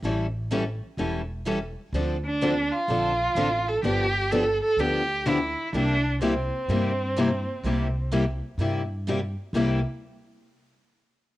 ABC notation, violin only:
X:1
M:4/4
L:1/8
Q:"Swing" 1/4=126
K:Cmix
V:1 name="Violin"
z8 | z D2 F4 A | G2 A A G2 E2 | D2 C6- |
C2 z6 | z8 |]